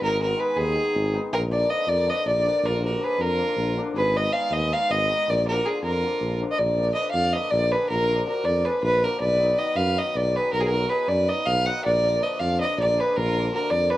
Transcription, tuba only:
0.01 0.33 G#1 medium
0.56 0.79 D#2 medium
0.94 1.17 G#1 medium
1.32 1.65 A#1 medium
1.87 2.10 F2 medium
2.25 2.48 A#1 medium
2.63 2.96 A#1 medium
3.18 3.42 F2 medium
3.56 3.80 A#1 medium
3.95 4.28 G#1 loud
4.50 4.73 D#2 medium
4.89 5.12 G#1 medium
5.28 5.61 A#1 medium
5.82 6.05 F2 medium
6.20 6.43 A#1 medium
6.59 6.91 A#1 medium
7.13 7.36 F2 medium
7.52 7.75 A#1 loud
7.90 8.23 A#1 loud
8.44 8.67 F2 medium
8.83 9.06 A#1 medium
9.21 9.54 B1 medium
9.76 9.99 F#2 loud
10.15 10.38 B1 medium
10.53 10.86 B1 loud
11.08 11.31 F#2 medium
11.46 11.69 B1 medium
11.86 12.18 A#1 loud
12.40 12.63 F2 medium
12.77 13.00 A#1 medium
13.17 13.49 A#1 loud
13.71 13.94 F2 medium

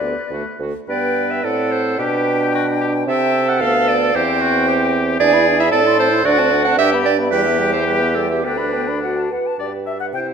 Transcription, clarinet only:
0.03 0.16 G4 soft
0.32 0.45 F#4 soft
0.62 0.74 F#4 soft
0.90 1.32 D5 medium
1.31 1.45 E5 medium
1.44 1.73 D5 medium
1.72 2.00 C5 medium
1.99 2.81 B4 medium
3.08 3.50 E5 loud
3.49 3.63 F#5 medium
3.61 3.90 F5 loud
3.88 4.17 D5 loud
4.16 4.95 C5 loud
5.20 5.57 D5 loud
5.60 5.72 E5 loud
5.72 5.98 D5 loud
5.99 6.27 C5 loud
6.26 6.64 D5 loud
6.65 6.78 F#5 loud
6.78 6.91 E5 loud
7.05 7.17 D5 loud
7.31 7.72 B4 loud
7.73 7.86 C5 medium
7.87 8.16 B4 loud
8.15 8.30 A4 medium
8.30 8.46 G4 medium
8.45 9.03 B4 medium
9.60 10.16 B4 soft
10.15 10.34 C5 soft

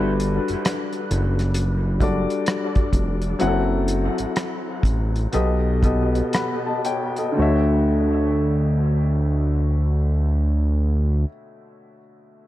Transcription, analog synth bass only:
0.00 0.39 G1 medium
0.50 0.56 F#1 soft
1.11 2.26 F#1 medium
2.94 3.35 F1 medium
3.42 4.09 F#1 loud
4.20 4.26 A1 soft
4.84 5.27 A1 medium
5.35 6.22 B1 medium
7.39 11.25 D2 medium

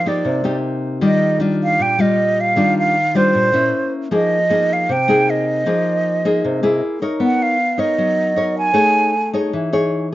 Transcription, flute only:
0.08 0.57 D5 medium
1.04 1.39 D#5 medium
1.63 1.83 F5 medium
1.82 2.02 G5 medium
2.01 2.42 D#5 medium
2.41 2.77 F5 medium
2.79 3.18 F5 loud
3.16 3.93 C5 medium
4.14 4.75 D#5 medium
4.73 4.94 F5 medium
4.92 5.32 G5 medium
5.30 6.83 D#5 medium
7.23 7.44 F#5 medium
7.43 7.81 F5 medium
7.79 8.56 D#5 medium
8.58 9.30 G#5 loud

